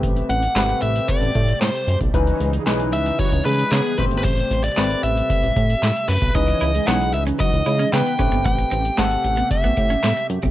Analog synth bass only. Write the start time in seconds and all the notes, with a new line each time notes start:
0.03 A1
0.29 A1
0.56 G#1
0.82 A1
1.22 A1
1.35 A2
1.61 A2
1.87 F#2
2.01 B1
2.14 C#2
2.40 C#2
2.67 B1
2.93 C#2
3.32 C#2
3.46 C#3
3.72 C#3
3.99 A1
4.11 G1
4.25 A1
4.51 A1
4.77 G#1
5.04 A1
5.43 A1
5.56 A2
5.83 A2
6.09 F#2
6.22 B1
6.35 C#2
6.62 C#2
6.88 B1
7.14 C#2
7.53 C#2
7.66 C#3
7.93 C#3
8.19 A1
8.32 G1
8.46 A1
8.72 A1
8.98 G#1
9.25 A1
9.64 A1
9.77 A2
10.04 A2
10.30 F#2
10.43 B1